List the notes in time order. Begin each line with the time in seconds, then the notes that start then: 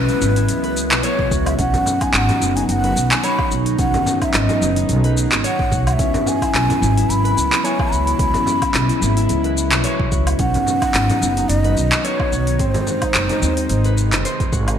Already playing: C#3 E3 F#3 G#3 B3 C#4 E4 F#4 B4 C#5
0.09 E4, open hi-hat, shaker
0.20 G#1 F#3 B3, shaker
0.24 E4
0.36 E4, open hi-hat, shaker
0.48 C#2, open hi-hat, shaker
0.64 B4, open hi-hat
0.77 shaker
0.91 B1, clap, open hi-hat, shaker
1.03 F#3 B3 E4 C#5, open hi-hat, shaker
1.19 B1, kick
1.31 C#2 F#4, kick, shaker
1.46 E5, open hi-hat, low woodblock, shaker
1.57 B1 B2 D#3 F#3 B3 C#4 D#4 F#5, kick, open hi-hat, shaker
1.61 D#4
1.74 open hi-hat, frame drum, shaker
1.86 frame drum, shaker
2.01 D#4 G#5, kick, open hi-hat, low woodblock, shaker
2.13 G#1 F#5 G#5, clap, open hi-hat, shaker
2.29 D#4, open hi-hat, frame drum, shaker
2.39 F#1 F#3 B3 D#4, shaker
2.56 D#4 G#5, open hi-hat, shaker
2.68 F#1 F#5 G#5, open hi-hat, shaker
2.84 B4, open hi-hat
2.96 B1, shaker
3.11 G#5, clap, open hi-hat, shaker
3.23 F#3 B3 D#4 C#5 B5, open hi-hat, shaker
3.39 kick, low woodblock
3.51 B1 F#4, shaker
3.66 open hi-hat, shaker
3.77 B1 F#3 B3 C#4 G#4 F#5, kick, open hi-hat, shaker
3.81 D#4
3.94 open hi-hat, frame drum, shaker
4.06 frame drum, shaker
4.21 D#4 E5, kick, open hi-hat, low woodblock, shaker
4.34 G#1 D#5, clap, open hi-hat, shaker
4.49 D#4, open hi-hat, frame drum, shaker
4.59 F#1 F#3 B3 D#4, shaker
4.76 D#4, open hi-hat, shaker
4.89 B1, open hi-hat, shaker
5.04 B4, open hi-hat
5.17 shaker
5.32 G#1, clap, open hi-hat, shaker
5.44 C#5 F#5, open hi-hat, shaker
5.59 G#1, kick
5.71 B1 F#4, kick, shaker
5.87 F#5, open hi-hat, low woodblock, shaker
5.93 E5
5.97 C#3 E3 F#3 G#3 B3 C#4 E4, kick, open hi-hat, shaker
6.14 open hi-hat, frame drum, shaker
6.26 G#5, frame drum, shaker
6.42 E4, kick, open hi-hat, low woodblock, shaker
6.54 B1, clap, open hi-hat, shaker
6.69 E4, open hi-hat, frame drum, shaker
6.80 G#1 F#3 B3 E4, shaker
6.97 E4, open hi-hat, shaker
7.09 G#1 B5, open hi-hat, shaker
7.24 B4, open hi-hat
7.37 C#2, shaker
7.53 clap, open hi-hat, shaker
7.63 F#3 B3 E4 C#5 G#5, open hi-hat, shaker
7.79 kick, low woodblock
7.92 C#2 F#4 B5, shaker
8.07 open hi-hat, shaker
8.17 C#2 F#3 B3 C#4, kick, open hi-hat, shaker
8.21 E4
8.34 open hi-hat, frame drum, shaker
8.46 frame drum, shaker
8.62 E4, kick, open hi-hat, low woodblock, shaker
8.74 B1, clap, open hi-hat, shaker
8.89 E4, open hi-hat, shaker
9.00 G#1 F#3 B3 E4, shaker
9.17 E4, open hi-hat, shaker
9.29 C#2, open hi-hat, shaker
9.44 B4, open hi-hat
9.57 shaker
9.72 B1, clap, open hi-hat, shaker
9.83 F#3 B3 E4 C#5, open hi-hat, shaker
9.99 B1, kick
10.12 C#2 F#4, kick, shaker
10.27 open hi-hat, low woodblock, shaker
10.37 B1 B2 D#3 F#3 B3 C#4 D#4 F#4 F#5, kick, open hi-hat, shaker
10.41 D#4
10.54 open hi-hat, frame drum, shaker
10.66 frame drum, shaker
10.82 D#4, kick, open hi-hat, low woodblock, shaker
10.94 G#1, clap, open hi-hat, shaker
11.10 D#4, open hi-hat, frame drum, shaker
11.20 F#1 F#3 B3, shaker
11.24 D#4
11.37 D#4, open hi-hat, shaker
11.49 F#1 D#5, open hi-hat, shaker
11.64 B4, open hi-hat
11.77 B1, shaker
11.92 clap, open hi-hat, shaker
12.03 F#3 B3 D#4 C#5 D#5, open hi-hat, shaker
12.20 kick, low woodblock
12.32 B1 F#4, shaker
12.47 open hi-hat, shaker
12.58 G#1 C3 D#3 G#3 C4 G#4 C#5, kick, open hi-hat, shaker
12.70 C5
12.74 open hi-hat, frame drum, shaker
12.87 frame drum, shaker
13.02 D#4, kick, open hi-hat, low woodblock, shaker
13.14 F#1, clap, open hi-hat, shaker
13.29 D#4, open hi-hat, frame drum, shaker
13.40 D#2 D#3 G#3 C4, shaker
13.57 D#4, open hi-hat, shaker
13.69 G#1, open hi-hat, shaker
13.84 B4, open hi-hat, shaker
13.98 shaker
14.12 F#1, clap, open hi-hat, shaker
14.25 C5, open hi-hat, shaker
14.40 F#1, kick, open hi-hat, shaker
14.52 G#1 F#4, kick, shaker
14.68 open hi-hat, low woodblock, shaker